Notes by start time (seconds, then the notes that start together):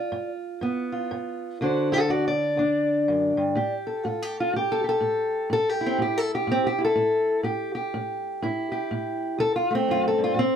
Already playing: F4 D5
0.12 G2
0.61 G2 B3
0.92 F4
1.11 G2
1.61 D2 D3 D4 F#4 C5
1.92 F#4 A4
2.08 D2 F#4 D5
2.28 D5
2.57 D2 D4
3.08 F#2
3.37 G2
3.55 A2 G4
3.87 A4
4.05 A2 F4
4.22 G4
4.40 F4
4.54 A2 G4
4.72 A4
4.84 G4
4.89 A4
5.01 A2
5.50 A2 A4
5.69 G4
5.81 E4
5.86 C4
5.98 A2 G4
6.18 A4
6.35 G4
6.47 A2
6.52 C4
6.67 G4
6.78 E4
6.85 A4
6.96 A2
7.43 A2 G4
7.75 G4
7.94 A2
8.42 A2 E4
8.72 G4
8.91 A2
9.38 D2 A4
9.56 F4
9.71 A3
9.75 C4
9.88 F#2 F4
10.08 A4
10.18 G2
10.24 F4
10.34 A2
10.39 C4